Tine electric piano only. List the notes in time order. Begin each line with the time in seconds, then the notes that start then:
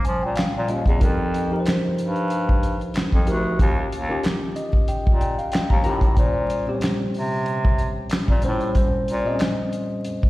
Already playing: A#2 G3 C#4 F4 C5 C#5
0.05 G#5
0.23 G5
0.37 F5
0.67 A#2 G3 C#4 F4 D#5
0.99 F3 D#4 G4 A#4
1.51 F3 D#4 G4 A#4
1.60 C5
3.26 F3 D#4 G4 A#4
3.58 D#3 C#4 F4 G4
4.09 D#3 C#4 F4 G4
4.56 D#5
4.88 G5
5.21 G5
5.38 F5
5.52 G5
5.70 A#5
5.83 D#3 C#4 F4 G4 A#5
6.15 A#2 G3 C#4 C5
6.66 A#2 G3 C4 G4
6.75 C#5
8.42 A#2 G3 C#4 C5
8.74 A#2 G3 C#4 C5
9.25 A#2 G3 C4 D#5
9.33 C#4